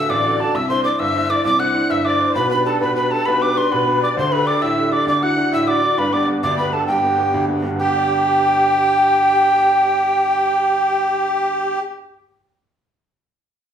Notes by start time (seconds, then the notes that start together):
Already playing: D1 D4 F#4 A4 E5 E6
0.09 A1 D5 D6
0.24 D4 F#4 A4
0.39 D4 F#4 A4 A5
0.54 C2 E5 E6
0.69 D4 E4 C5 C6
0.84 D4 E4 C5 D5 D6
0.99 G1 E5 E6
1.14 D4 E4 C5
1.30 D4 E4 C5 D5 D6
1.45 C2 D5 D6
1.59 D4 E4 C5 F#5 F#6
1.74 D4 E4 C5
1.90 G1 E5 E6
2.05 D4 E4 C5 D5 D6
2.19 D4 E4 C5
2.29 C5
2.35 B1 B2 B4 B5
2.50 D4 G4 B4 B5
2.65 D4 G4 A4 B4 A5
2.81 B2 B4 B5
2.95 D4 G4 B4 B5
3.11 D4 G4 A4 B4 A5
3.26 B1 B2 B4 B5
3.41 D4 G4 B4 D6
3.57 D4 G4 B4 C6
3.72 B2 B4 B5
3.86 D4 G4 B4
4.02 D4 G4 B4 D5 D6
4.16 D2 D3 C5 C6
4.31 D4 G4 A4 B4 B5
4.46 D4 G4 A4 D5 D6
4.61 A2 E5 E6
4.77 D4 G4 A4
4.92 D4 G4 A4 D5 D6
5.07 D2 D3 D5 D6
5.22 D4 E4 F#4 F#5 F#6
5.37 D4 E4 F#4
5.52 A2 E5 E6
5.67 D4 E4 F#4 D5 D6
5.82 D4 E4 F#4
5.98 G1 G2 B4 B5
6.13 B3 D4 G4 D5 D6
6.28 B3 D4 G4
6.43 D2 D5 D6
6.57 B3 D4 G4 B4 B5
6.73 B3 D4 G4 A4 A5
6.88 G1 G2 G4 G5
7.03 B3 D4 G4
7.18 B3 D4 G4
7.34 D2
7.48 B3 D4 G4
7.62 G2 B3 D4 G4
7.69 D3
7.76 B3 G4 G5
7.83 D4
7.90 G4
7.96 D5